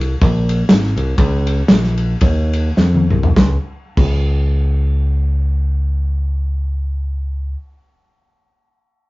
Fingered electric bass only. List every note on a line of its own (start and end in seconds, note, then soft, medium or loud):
0.00 0.14 C2 loud
0.21 0.62 A#1 loud
0.70 0.93 G#1 loud
0.96 1.15 C2 loud
1.18 1.61 C#2 loud
1.69 2.14 A#1 medium
2.22 2.69 D#2 loud
2.77 3.05 F2 loud
3.10 3.32 C2 medium
3.37 3.56 C#2 medium
3.97 7.54 C#2 loud